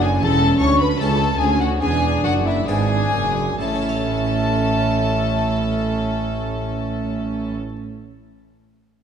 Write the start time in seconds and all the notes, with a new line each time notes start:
Already playing: F#1 F#2 D4
0.01 G#4 G#5
0.06 G#5
0.21 E1 E2 C#4 A4 A5
0.59 D2 C#5 C#6
0.80 B4 B5
0.99 C#2 A3 C#4 E4 A4 A5
1.39 D2 G#4 G#5
1.60 F#4 F#5
1.81 E1 E2 D4 G#4 G#5
2.24 F#1 F#2 F#4 F#5
2.45 E4 E5
2.68 G#1 G#2 B3 D4 E4 G#4 G#5
3.13 F#1 F#2
3.59 A1 A2 C#4 A4 E5 A5
3.68 A3
3.75 C#4
3.82 E4
3.89 C#5